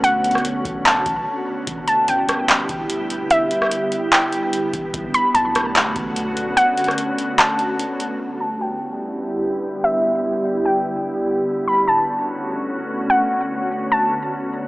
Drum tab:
HH |x-----x-x-x-x-----x-----x-----x-----------------|x-----x-----x-----x-----x-----x-----x-----x-----|x-----x-----x-----x-----x-----x-----x-----x-----|x-----x-----x-----x-----x-----x-----x-----x-----|
CP |------------------------x-----------------------|------------------------x-----------------------|------------------------x-----------------------|------------------------x-----------------------|
SD |---------r--------------------------------------|------------------r-----------------------------|---------r--------------------------------------|------------------r-----------------------------|
BD |------------------o-----------o-----------------|o-----------------------------o-----------------|------------------------------------------o-----|o-----------------------------o-----------------|

HH |x-----x-x-x-x-----x-----x-----x-----x-----x-----|------------------------------------------------|------------------------------------------------|------------------------------------------------|
CP |------------------------x-----------------------|------------------------------------------------|------------------------------------------------|------------------------------------------------|
SD |---------r--------------------------------------|------------------------------------------------|------------------------------------------------|------------------------------------------------|
BD |------------------------------------------------|------------------------------------------------|------------------------------------------------|------------------------------------------------|

HH |------------------------------------------------|
CP |------------------------------------------------|
SD |------------------------------------------------|
BD |------------------------------------------------|